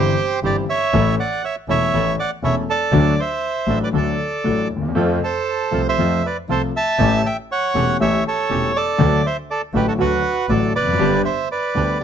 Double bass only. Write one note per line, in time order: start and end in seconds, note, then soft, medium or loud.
0.00 0.14 G1 medium
0.43 0.64 G1 medium
0.93 1.14 A1 medium
1.68 1.89 E1 medium
1.93 2.14 A1 medium
2.43 2.64 E1 medium
2.92 3.13 D2 medium
3.67 3.89 A1 soft
3.93 4.15 D2 medium
4.45 4.66 A1 soft
4.70 4.95 D#2 soft
4.96 5.17 F2 medium
5.73 5.94 C2 soft
5.98 6.20 F2 medium
6.48 6.70 C2 medium
6.99 7.20 A1 medium
7.75 7.96 E1 medium
8.01 8.21 A1 soft
8.51 8.71 E1 soft
9.00 9.20 D2 medium
9.74 9.95 A1 medium
10.00 10.20 D2 medium
10.49 10.70 A1 medium
10.75 10.99 F1 medium
11.00 11.21 G1 medium
11.76 11.97 D2 medium